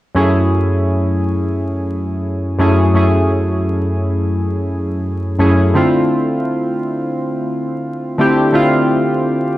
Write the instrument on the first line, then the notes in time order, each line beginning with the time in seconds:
synth keys
0.15 F#2 A3 C#4 E4 G#4
2.59 F#2 A3 C#4 E4 G#4
2.94 F#2 A3 C#4 E4 G#4
5.39 F#2 A3 C#4 E4 G#4
5.74 D3 A3 C4 E4 F4
8.18 D3 A3 C4 E4 G4
8.52 D3 A3 C4 E4 F4